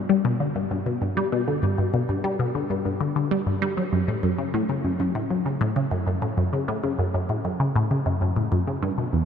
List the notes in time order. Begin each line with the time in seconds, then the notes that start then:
0.09 G3
0.25 B2
0.40 D3
0.55 G2
0.71 G2
0.86 B2
1.02 G2
1.17 G3
1.32 B2
1.48 D3
1.63 G2
1.78 G2
1.94 B2
2.09 G2
2.24 G3
2.39 B2
2.55 D3
2.70 G2
2.85 G2
3.01 D3
3.16 D3
3.31 G3
3.47 G2
3.62 G3
3.77 F#3
3.93 F#2
4.08 A2
4.23 F#2
4.38 C#3
4.54 A2
4.69 C#3
4.85 F#2
5.00 F#2
5.15 A2
5.30 F#2
5.46 C#3
5.61 A2
5.76 C#3
5.91 F#2
6.07 F#2
6.22 A2
6.38 F#2
6.53 C#3
6.68 A2
6.84 C#3
6.99 F#2
7.14 F#2
7.29 A2
7.45 F#2
7.60 C#3
7.76 A2
7.91 C#3
8.06 F#2
8.21 F#2
8.36 A2
8.52 F#2
8.67 C#3
8.83 G2
8.98 B2
9.13 E2